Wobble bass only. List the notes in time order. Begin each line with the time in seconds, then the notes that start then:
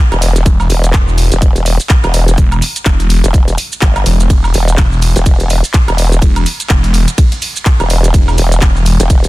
0.12 E1
0.70 E1
1.32 E1
2.04 E1
3.24 E1
3.82 G1
4.54 E1
5.16 E1
5.88 E1
7.80 E1
8.38 E1
9.00 E1